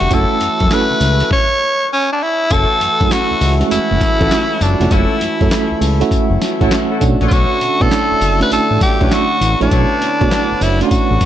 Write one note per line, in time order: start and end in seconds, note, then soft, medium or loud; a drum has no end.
0.00 0.08 F1 medium
0.00 0.13 G3 medium
0.00 0.13 B3 medium
0.00 0.13 D4 medium
0.00 0.11 F#4 medium
0.00 0.15 F#4 medium
0.00 0.13 F#5 loud
0.00 closed hi-hat medium
0.10 0.26 F#1 loud
0.10 1.30 E3 medium
0.10 0.66 A3 medium
0.10 1.30 A3 medium
0.10 0.39 C#4 medium
0.10 0.67 C#4 medium
0.10 0.39 E4 medium
0.10 0.67 E4 medium
0.10 1.30 F#4 medium
0.10 0.39 F#4 medium
0.10 0.67 F#4 loud
0.10 0.40 A4 loud
0.10 0.75 A4 loud
0.10 kick loud
0.10 closed hi-hat medium
0.10 tambourine medium
0.41 0.49 F#2 soft
0.41 closed hi-hat medium
0.60 0.68 F#2 loud
0.60 kick loud
0.60 closed hi-hat medium
0.71 1.27 A3 medium
0.71 1.27 C#4 medium
0.71 1.27 E4 medium
0.71 1.27 A4 medium
0.71 1.32 B4 loud
0.71 snare loud
0.71 clap medium
0.71 closed hi-hat medium
0.71 tambourine loud
0.91 0.95 C#2 medium
1.00 1.23 C#2 medium
1.00 open hi-hat medium
1.00 tambourine medium
1.20 closed hi-hat medium
1.31 1.88 C#5 loud
1.31 kick loud
1.31 snare medium
1.93 2.11 C#4 loud
2.12 2.24 D4 medium
2.23 2.54 E4 loud
2.50 2.66 F#1 loud
2.50 6.97 E3 medium
2.50 9.37 A3 medium
2.50 2.79 C#4 loud
2.50 2.79 E4 medium
2.50 2.79 F#4 medium
2.50 4.89 F#4 medium
2.50 2.79 A4 loud
2.50 3.14 A4 loud
2.50 kick loud
2.50 closed hi-hat medium
2.50 tambourine medium
2.81 2.89 F#2 soft
2.81 closed hi-hat medium
3.00 3.08 F#2 loud
3.00 3.52 A3 medium
3.00 3.53 C#4 medium
3.00 3.53 E4 medium
3.00 3.53 F#4 loud
3.00 kick loud
3.00 closed hi-hat medium
3.11 3.54 F#4 loud
3.11 snare loud
3.11 clap loud
3.11 closed hi-hat medium
3.11 tambourine loud
3.31 3.35 C#2 soft
3.41 3.63 C#2 medium
3.41 open hi-hat medium
3.41 tambourine medium
3.60 3.65 G#3 medium
3.60 4.12 C#4 medium
3.60 4.13 E4 medium
3.60 4.13 F#4 medium
3.60 closed hi-hat medium
3.67 4.15 A3 medium
3.71 3.79 F#1 soft
3.71 4.64 E4 loud
3.71 closed hi-hat medium
3.71 tambourine medium
3.91 3.99 F#1 medium
4.01 kick loud
4.01 snare medium
4.01 closed hi-hat medium
4.01 tambourine medium
4.20 4.28 A1 medium
4.20 4.72 A3 medium
4.20 4.33 C#4 medium
4.20 4.72 C#4 medium
4.20 4.33 E4 medium
4.20 4.72 E4 medium
4.20 4.25 F4 medium
4.20 4.34 F#4 medium
4.20 4.34 A4 medium
4.20 kick medium
4.20 closed hi-hat medium
4.28 4.76 F#4 medium
4.28 snare loud
4.28 closed hi-hat medium
4.28 tambourine medium
4.32 clap medium
4.61 4.76 F#1 medium
4.61 4.94 D4 medium
4.61 closed hi-hat medium
4.61 tambourine medium
4.80 4.88 F1 loud
4.80 5.32 A3 medium
4.80 5.32 C#4 medium
4.80 5.33 E4 medium
4.80 5.33 F#4 medium
4.80 closed hi-hat medium
4.90 5.06 F#1 loud
4.90 5.19 C#4 loud
4.90 5.19 E4 medium
4.90 6.99 E4 medium
4.90 5.82 E4 medium
4.90 5.19 F#4 medium
4.90 5.19 A4 loud
4.90 kick loud
4.90 closed hi-hat medium
4.90 tambourine medium
5.21 5.29 F#2 medium
5.21 closed hi-hat medium
5.41 5.49 F#2 loud
5.41 5.93 A3 medium
5.41 5.93 C#4 medium
5.41 5.93 E4 medium
5.41 5.93 A4 loud
5.41 kick loud
5.41 closed hi-hat medium
5.51 snare loud
5.51 clap medium
5.51 closed hi-hat medium
5.51 tambourine loud
5.71 5.75 C#2 soft
5.81 6.03 C#2 medium
5.81 open hi-hat medium
5.81 tambourine medium
6.00 6.52 A3 loud
6.00 6.52 C#4 medium
6.00 6.53 E4 medium
6.00 6.53 F#4 loud
6.00 closed hi-hat medium
6.11 6.19 F#1 soft
6.11 kick medium
6.11 closed hi-hat medium
6.11 tambourine medium
6.30 6.38 F#1 medium
6.41 snare medium
6.41 closed hi-hat medium
6.41 tambourine medium
6.60 6.69 A1 loud
6.60 6.99 A3 loud
6.60 6.73 C#4 medium
6.60 6.99 C#4 loud
6.60 6.73 E4 medium
6.60 7.01 E4 loud
6.60 6.74 F#4 medium
6.60 7.00 F#4 loud
6.60 6.74 A4 loud
6.60 kick medium
6.60 closed hi-hat medium
6.71 snare loud
6.71 clap loud
6.71 closed hi-hat medium
6.71 tambourine medium
6.90 7.03 C#4 medium
6.90 7.04 E4 medium
6.90 7.04 F#4 medium
6.90 7.04 A4 medium
7.00 7.16 B1 loud
7.00 11.25 D3 medium
7.00 7.70 A3 loud
7.00 7.70 C#4 medium
7.00 7.70 D4 medium
7.00 7.71 F#4 loud
7.00 kick medium
7.00 closed hi-hat medium
7.00 tambourine medium
7.20 7.29 A#1 medium
7.20 7.30 D4 medium
7.20 7.30 A4 medium
7.20 7.30 B4 medium
7.20 7.30 C#5 medium
7.20 closed hi-hat medium
7.28 7.46 B1 loud
7.28 7.59 D4 medium
7.28 7.34 F4 medium
7.28 7.59 A4 medium
7.28 7.60 B4 medium
7.28 7.60 C#5 loud
7.28 kick loud
7.28 closed hi-hat medium
7.28 tambourine medium
7.33 7.83 F#4 loud
7.61 7.69 B2 soft
7.61 closed hi-hat medium
7.80 7.89 B2 loud
7.80 8.32 A3 medium
7.80 8.32 C#4 medium
7.80 8.33 D4 medium
7.80 8.33 E4 loud
7.80 8.41 A4 loud
7.80 kick loud
7.80 closed hi-hat medium
7.91 snare loud
7.91 clap medium
7.91 closed hi-hat medium
7.91 tambourine loud
8.11 8.15 F#1 soft
8.21 8.43 F#1 medium
8.21 open hi-hat medium
8.21 tambourine medium
8.40 8.92 A3 medium
8.40 8.92 C#4 medium
8.40 8.93 D4 medium
8.40 8.93 F#4 medium
8.40 8.51 B4 loud
8.40 closed hi-hat medium
8.51 8.59 A1 soft
8.51 8.80 A4 loud
8.51 closed hi-hat medium
8.51 tambourine medium
8.71 8.78 A1 medium
8.81 9.14 G4 loud
8.81 kick loud
8.81 snare medium
8.81 closed hi-hat medium
8.81 tambourine medium
9.01 9.09 B1 medium
9.01 9.53 A3 medium
9.01 9.53 C#4 medium
9.01 9.14 D4 medium
9.01 9.53 D4 medium
9.01 9.06 E4 medium
9.01 9.14 A4 medium
9.01 9.14 B4 medium
9.01 9.14 C#5 medium
9.01 kick loud
9.01 closed hi-hat medium
9.08 9.56 F#4 loud
9.08 snare loud
9.08 closed hi-hat medium
9.08 tambourine medium
9.13 9.62 F#4 loud
9.13 clap medium
9.41 9.56 A1 medium
9.41 11.25 B3 medium
9.41 closed hi-hat medium
9.41 tambourine medium
9.60 9.69 A#1 loud
9.60 10.12 A3 medium
9.60 10.13 D4 medium
9.60 10.64 D4 medium
9.60 10.13 E4 medium
9.60 10.12 C#5 medium
9.60 closed hi-hat medium
9.71 9.86 B1 loud
9.71 9.99 D4 medium
9.71 9.99 A4 medium
9.71 10.00 B4 medium
9.71 10.00 C#5 loud
9.71 kick loud
9.71 closed hi-hat medium
9.71 tambourine medium
10.01 10.09 B2 medium
10.01 closed hi-hat medium
10.20 10.29 B2 medium
10.20 10.72 A3 medium
10.20 10.73 D4 medium
10.20 10.73 F#4 medium
10.20 10.72 C#5 medium
10.20 kick loud
10.20 closed hi-hat medium
10.31 snare loud
10.31 clap medium
10.31 closed hi-hat medium
10.31 tambourine medium
10.51 10.55 F#1 medium
10.61 10.83 F#1 medium
10.61 10.82 E4 medium
10.61 open hi-hat medium
10.61 tambourine medium
10.81 11.25 A3 medium
10.81 11.25 C#4 medium
10.81 11.25 D4 medium
10.81 11.25 F#4 medium
10.81 closed hi-hat medium
10.91 10.99 A1 medium
10.91 kick medium
10.91 closed hi-hat medium
10.91 tambourine medium
11.11 11.18 A1 medium
11.21 kick loud
11.21 snare medium
11.21 closed hi-hat medium
11.21 tambourine medium